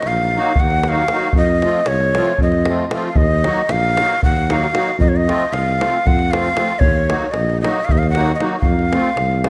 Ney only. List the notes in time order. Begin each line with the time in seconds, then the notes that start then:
0.07 F5
0.60 F#5
0.88 F5
1.37 D#5
1.87 C#5
2.43 D#5
3.08 F5
3.16 D#5
3.71 F5
4.24 F#5
4.52 F5
5.00 D#5
5.08 C#5
5.16 D#5
5.53 F5
6.07 F#5
6.31 F5
6.79 C#5
7.31 D#5
7.61 D#5
7.85 F5
7.92 D#5
7.98 F5
8.10 F#5
8.35 D#5
8.60 F5